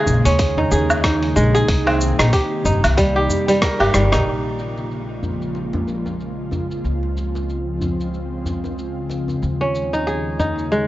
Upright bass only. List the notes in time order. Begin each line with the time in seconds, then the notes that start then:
0.07 A#1
0.26 D#2
0.72 D#2
1.36 A#1
1.68 C2
2.19 A#1
2.65 G1
2.84 C2
3.80 G1
3.94 G1
4.13 A#1
4.26 A#1
6.84 C#2
9.43 D#2